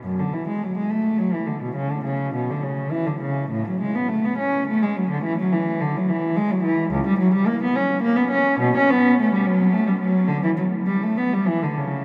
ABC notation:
X:1
M:3/4
L:1/16
Q:1/4=105
K:F#m
V:1 name="Cello" clef=bass
F,, D, E, G, F, G, A,2 F, E, D, B,, | C, D, C,2 B,, D, C,2 E, D, C,2 | A,, F, G, B, A, B, C2 A, G, F, D, | E, F, E,2 D, F, E,2 G, F, E,2 |
[K:Bm] C,, G, F, G, ^A, B, C2 A, B, C2 | B,, C B,2 A, G, F,2 A, G, F,2 | D, E, F,2 G, A, B, G, E, D, C,2 |]